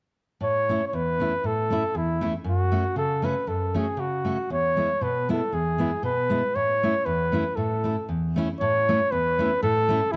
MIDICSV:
0, 0, Header, 1, 3, 480
1, 0, Start_track
1, 0, Key_signature, 3, "major"
1, 0, Tempo, 511073
1, 392, Time_signature, 2, 2, 24, 8
1, 9546, End_track
2, 0, Start_track
2, 0, Title_t, "Flugelhorn"
2, 0, Program_c, 0, 56
2, 403, Note_on_c, 0, 73, 89
2, 793, Note_off_c, 0, 73, 0
2, 825, Note_on_c, 0, 73, 61
2, 891, Note_on_c, 0, 71, 91
2, 905, Note_off_c, 0, 73, 0
2, 1372, Note_on_c, 0, 69, 89
2, 1386, Note_off_c, 0, 71, 0
2, 1848, Note_on_c, 0, 64, 85
2, 1862, Note_off_c, 0, 69, 0
2, 2206, Note_off_c, 0, 64, 0
2, 2333, Note_on_c, 0, 66, 81
2, 2757, Note_off_c, 0, 66, 0
2, 2792, Note_on_c, 0, 69, 89
2, 3047, Note_on_c, 0, 71, 76
2, 3061, Note_off_c, 0, 69, 0
2, 3267, Note_on_c, 0, 69, 76
2, 3281, Note_off_c, 0, 71, 0
2, 3537, Note_on_c, 0, 68, 76
2, 3551, Note_off_c, 0, 69, 0
2, 3754, Note_on_c, 0, 66, 78
2, 3768, Note_off_c, 0, 68, 0
2, 4232, Note_off_c, 0, 66, 0
2, 4240, Note_on_c, 0, 73, 90
2, 4729, Note_on_c, 0, 71, 81
2, 4743, Note_off_c, 0, 73, 0
2, 4982, Note_off_c, 0, 71, 0
2, 4989, Note_on_c, 0, 69, 75
2, 5201, Note_on_c, 0, 68, 87
2, 5215, Note_off_c, 0, 69, 0
2, 5667, Note_off_c, 0, 68, 0
2, 5678, Note_on_c, 0, 71, 90
2, 6154, Note_on_c, 0, 73, 97
2, 6168, Note_off_c, 0, 71, 0
2, 6623, Note_on_c, 0, 71, 89
2, 6638, Note_off_c, 0, 73, 0
2, 7097, Note_on_c, 0, 69, 73
2, 7111, Note_off_c, 0, 71, 0
2, 7583, Note_off_c, 0, 69, 0
2, 8077, Note_on_c, 0, 73, 88
2, 8559, Note_on_c, 0, 71, 94
2, 8574, Note_off_c, 0, 73, 0
2, 9036, Note_off_c, 0, 71, 0
2, 9042, Note_on_c, 0, 69, 101
2, 9503, Note_on_c, 0, 64, 97
2, 9517, Note_off_c, 0, 69, 0
2, 9546, Note_off_c, 0, 64, 0
2, 9546, End_track
3, 0, Start_track
3, 0, Title_t, "Steel-string acoustic guitar"
3, 0, Program_c, 1, 25
3, 381, Note_on_c, 1, 45, 52
3, 650, Note_on_c, 1, 57, 53
3, 658, Note_on_c, 1, 61, 54
3, 666, Note_on_c, 1, 64, 62
3, 752, Note_off_c, 1, 57, 0
3, 755, Note_off_c, 1, 45, 0
3, 756, Note_off_c, 1, 61, 0
3, 760, Note_off_c, 1, 64, 0
3, 875, Note_on_c, 1, 40, 51
3, 1125, Note_on_c, 1, 57, 59
3, 1133, Note_on_c, 1, 61, 48
3, 1140, Note_on_c, 1, 64, 59
3, 1229, Note_off_c, 1, 57, 0
3, 1233, Note_off_c, 1, 61, 0
3, 1236, Note_off_c, 1, 64, 0
3, 1239, Note_off_c, 1, 40, 0
3, 1351, Note_on_c, 1, 45, 51
3, 1600, Note_on_c, 1, 57, 58
3, 1614, Note_on_c, 1, 61, 51
3, 1621, Note_on_c, 1, 64, 70
3, 1704, Note_off_c, 1, 57, 0
3, 1711, Note_off_c, 1, 61, 0
3, 1714, Note_off_c, 1, 45, 0
3, 1714, Note_off_c, 1, 64, 0
3, 1827, Note_on_c, 1, 40, 52
3, 2077, Note_on_c, 1, 57, 59
3, 2083, Note_on_c, 1, 61, 53
3, 2089, Note_on_c, 1, 64, 67
3, 2180, Note_off_c, 1, 57, 0
3, 2183, Note_off_c, 1, 61, 0
3, 2186, Note_off_c, 1, 64, 0
3, 2190, Note_off_c, 1, 40, 0
3, 2294, Note_on_c, 1, 42, 62
3, 2551, Note_on_c, 1, 57, 62
3, 2561, Note_on_c, 1, 61, 55
3, 2570, Note_on_c, 1, 66, 63
3, 2652, Note_off_c, 1, 57, 0
3, 2658, Note_off_c, 1, 42, 0
3, 2658, Note_off_c, 1, 61, 0
3, 2662, Note_off_c, 1, 66, 0
3, 2780, Note_on_c, 1, 49, 57
3, 3026, Note_on_c, 1, 57, 59
3, 3035, Note_on_c, 1, 61, 57
3, 3047, Note_on_c, 1, 66, 67
3, 3126, Note_off_c, 1, 57, 0
3, 3131, Note_off_c, 1, 61, 0
3, 3137, Note_off_c, 1, 49, 0
3, 3137, Note_off_c, 1, 66, 0
3, 3260, Note_on_c, 1, 42, 52
3, 3517, Note_on_c, 1, 57, 59
3, 3524, Note_on_c, 1, 61, 51
3, 3528, Note_on_c, 1, 66, 69
3, 3614, Note_off_c, 1, 57, 0
3, 3617, Note_off_c, 1, 61, 0
3, 3620, Note_off_c, 1, 66, 0
3, 3623, Note_off_c, 1, 42, 0
3, 3726, Note_on_c, 1, 49, 51
3, 3988, Note_on_c, 1, 57, 58
3, 3998, Note_on_c, 1, 61, 51
3, 4007, Note_on_c, 1, 66, 59
3, 4094, Note_off_c, 1, 57, 0
3, 4098, Note_off_c, 1, 61, 0
3, 4101, Note_off_c, 1, 49, 0
3, 4103, Note_off_c, 1, 66, 0
3, 4228, Note_on_c, 1, 40, 48
3, 4476, Note_on_c, 1, 56, 53
3, 4481, Note_on_c, 1, 59, 51
3, 4492, Note_on_c, 1, 64, 59
3, 4582, Note_off_c, 1, 56, 0
3, 4585, Note_off_c, 1, 59, 0
3, 4590, Note_off_c, 1, 64, 0
3, 4597, Note_off_c, 1, 40, 0
3, 4708, Note_on_c, 1, 47, 53
3, 4968, Note_on_c, 1, 56, 60
3, 4973, Note_on_c, 1, 59, 53
3, 4977, Note_on_c, 1, 64, 71
3, 5067, Note_off_c, 1, 56, 0
3, 5070, Note_off_c, 1, 59, 0
3, 5072, Note_off_c, 1, 64, 0
3, 5073, Note_off_c, 1, 47, 0
3, 5189, Note_on_c, 1, 40, 48
3, 5431, Note_on_c, 1, 56, 54
3, 5438, Note_on_c, 1, 59, 58
3, 5447, Note_on_c, 1, 64, 62
3, 5535, Note_off_c, 1, 56, 0
3, 5538, Note_off_c, 1, 59, 0
3, 5543, Note_off_c, 1, 64, 0
3, 5548, Note_off_c, 1, 40, 0
3, 5662, Note_on_c, 1, 47, 60
3, 5913, Note_on_c, 1, 56, 59
3, 5920, Note_on_c, 1, 59, 60
3, 5923, Note_on_c, 1, 64, 69
3, 6014, Note_off_c, 1, 56, 0
3, 6018, Note_off_c, 1, 59, 0
3, 6018, Note_off_c, 1, 64, 0
3, 6024, Note_off_c, 1, 47, 0
3, 6156, Note_on_c, 1, 45, 51
3, 6417, Note_on_c, 1, 57, 57
3, 6422, Note_on_c, 1, 61, 50
3, 6431, Note_on_c, 1, 64, 65
3, 6506, Note_off_c, 1, 57, 0
3, 6507, Note_off_c, 1, 61, 0
3, 6512, Note_off_c, 1, 45, 0
3, 6513, Note_off_c, 1, 64, 0
3, 6631, Note_on_c, 1, 40, 65
3, 6875, Note_on_c, 1, 57, 56
3, 6884, Note_on_c, 1, 61, 58
3, 6895, Note_on_c, 1, 64, 69
3, 6973, Note_off_c, 1, 57, 0
3, 6977, Note_off_c, 1, 61, 0
3, 6982, Note_off_c, 1, 64, 0
3, 6986, Note_off_c, 1, 40, 0
3, 7110, Note_on_c, 1, 45, 55
3, 7361, Note_on_c, 1, 57, 54
3, 7372, Note_on_c, 1, 61, 48
3, 7374, Note_on_c, 1, 64, 59
3, 7459, Note_off_c, 1, 57, 0
3, 7465, Note_off_c, 1, 61, 0
3, 7466, Note_off_c, 1, 64, 0
3, 7472, Note_off_c, 1, 45, 0
3, 7594, Note_on_c, 1, 40, 49
3, 7851, Note_on_c, 1, 57, 64
3, 7864, Note_on_c, 1, 61, 65
3, 7869, Note_on_c, 1, 64, 82
3, 7951, Note_off_c, 1, 57, 0
3, 7957, Note_off_c, 1, 61, 0
3, 7960, Note_off_c, 1, 64, 0
3, 7963, Note_off_c, 1, 40, 0
3, 8086, Note_on_c, 1, 45, 63
3, 8346, Note_on_c, 1, 57, 67
3, 8352, Note_on_c, 1, 61, 59
3, 8357, Note_on_c, 1, 64, 62
3, 8441, Note_off_c, 1, 57, 0
3, 8444, Note_off_c, 1, 61, 0
3, 8447, Note_off_c, 1, 64, 0
3, 8450, Note_off_c, 1, 45, 0
3, 8567, Note_on_c, 1, 40, 63
3, 8818, Note_on_c, 1, 57, 65
3, 8830, Note_on_c, 1, 61, 55
3, 8833, Note_on_c, 1, 64, 66
3, 8916, Note_off_c, 1, 57, 0
3, 8922, Note_off_c, 1, 61, 0
3, 8922, Note_off_c, 1, 64, 0
3, 8926, Note_off_c, 1, 40, 0
3, 9041, Note_on_c, 1, 45, 67
3, 9286, Note_on_c, 1, 57, 65
3, 9293, Note_on_c, 1, 61, 55
3, 9299, Note_on_c, 1, 64, 77
3, 9387, Note_off_c, 1, 57, 0
3, 9390, Note_off_c, 1, 61, 0
3, 9393, Note_off_c, 1, 64, 0
3, 9399, Note_off_c, 1, 45, 0
3, 9546, End_track
0, 0, End_of_file